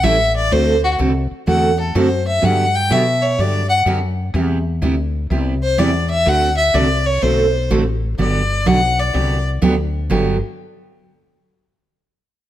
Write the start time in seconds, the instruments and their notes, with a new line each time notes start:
0.03 fretless electric bass A1, steel-string acoustic guitar E3 G3 C#4 E4 A4, fiddle E5
0.36 fiddle D5
0.51 fretless electric bass D2, steel-string acoustic guitar D3 A3 C4 F#4 A4, fiddle C5
0.84 fiddle F#4
0.98 fretless electric bass C2, steel-string acoustic guitar D3 A3 C4 F#4 A4
1.31 muted fretless electric bass stroke
1.47 fretless electric bass E2, steel-string acoustic guitar D3 A3 C4 F#4 A4, fiddle F#5
1.80 fiddle A4
1.95 fretless electric bass F#2, steel-string acoustic guitar D3 A3 C4 F#4 A4, fiddle C5
2.28 fiddle E5
2.42 fretless electric bass G2, steel-string acoustic guitar D3 F#3 B3 D4 G4, fiddle F#5
2.75 fiddle G5
2.90 fretless electric bass B2, steel-string acoustic guitar D3 F#3 B3 D4 G4, fiddle E5
3.22 fiddle C#5
3.38 fretless electric bass G2, steel-string acoustic guitar D3 F#3 B3 D4 G4, fiddle D5
3.69 fiddle F#5
3.86 fretless electric bass F#2, steel-string acoustic guitar D3 F#3 B3 D4 G4
4.34 fretless electric bass E2, steel-string acoustic guitar C3 G3 B3 E4 G4
4.82 fretless electric bass D2, steel-string acoustic guitar C3 G3 B3 E4 G4
5.30 fretless electric bass C2, steel-string acoustic guitar C3 G3 B3 E4 G4
5.63 fiddle C5
5.78 fretless electric bass E2, steel-string acoustic guitar C3 G3 B3 E4 G4, fiddle D5
6.10 fiddle E5
6.26 fretless electric bass D2, steel-string acoustic guitar D3 A3 C4 F#4 A4, fiddle F#5
6.57 fiddle E5
6.74 fretless electric bass C2, steel-string acoustic guitar D3 A3 C4 F#4 A4, fiddle D5
7.06 fiddle C#5
7.22 fretless electric bass B1, steel-string acoustic guitar D3 A3 C4 F#4 A4, fiddle C5
7.71 fretless electric bass A1, steel-string acoustic guitar D3 A3 C4 F#4 A4
8.18 fretless electric bass G1, steel-string acoustic guitar D3 F#3 B3 D4 G4, fiddle D5
8.66 fretless electric bass B1, steel-string acoustic guitar D3 F#3 B3 D4 G4, fiddle F#5
8.99 fiddle D5
9.13 fretless electric bass C2, steel-string acoustic guitar D3 F#3 B3 D4 G4
9.62 fretless electric bass D2, steel-string acoustic guitar D3 F#3 B3 D4 G4
10.10 fretless electric bass G1, steel-string acoustic guitar G2 D3 F#3 B3 D4 G4